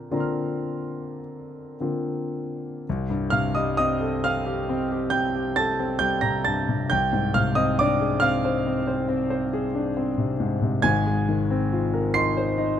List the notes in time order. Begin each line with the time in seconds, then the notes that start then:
Already playing: D3 A#3 C4 F4 A#4 A#5
0.11 D3 A#3 C4 F4 D5 A#5
0.17 C6 F6
1.80 D3 A#3 C4 F4
2.89 C2
3.10 G2
3.30 C3 F5 F6
3.55 G3 D#5 D#6
3.77 C4 D#5 D#6
4.00 A4
4.24 C4 F5 F6
4.46 G4
4.69 C4
4.92 G4
5.10 C4 G5 G6
5.36 G4
5.56 A4 A5 A6
5.79 C4
5.99 G3 G5 G6
6.21 C3 A#5 A#6
6.45 G2 A5 A6
6.69 C3
6.90 C2 G5 G6
7.13 G#2
7.34 C3 F5 F6
7.55 C4 D#5 D#6
7.79 D4 D5 D6
8.01 G#4
8.20 C4 F5 F6
8.45 C5
8.67 C4
8.87 C5
9.09 C4
9.30 C5
9.53 G#4
9.75 D4
9.97 C4
10.18 C3
10.40 G#2
10.62 C3
10.82 G#1 G#2 G#5 G#6
11.07 G#3
11.29 D#3
11.51 C4
11.73 F4
11.94 A#4
12.14 D#4 C6 C7
12.37 C5
12.58 D#4